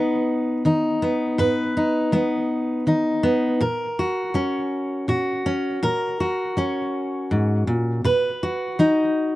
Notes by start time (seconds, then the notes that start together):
Already playing: G#3 B3 D#4 B4
0.65 D#3 D#4
1.02 B3
1.38 G#2 B4
1.77 D#4
2.12 G#3 B3
2.87 D#3 D#4
3.23 B3
3.61 A#2 A#4
3.99 F#4
4.34 F#3 C#4
5.08 A#2 F#4
5.46 C#4
5.83 A#2 A#4
6.20 F#4
6.57 F#3 C#4
7.31 G#2
7.67 A#2
8.04 B2 B4
8.43 F#4
8.79 F#3 D#4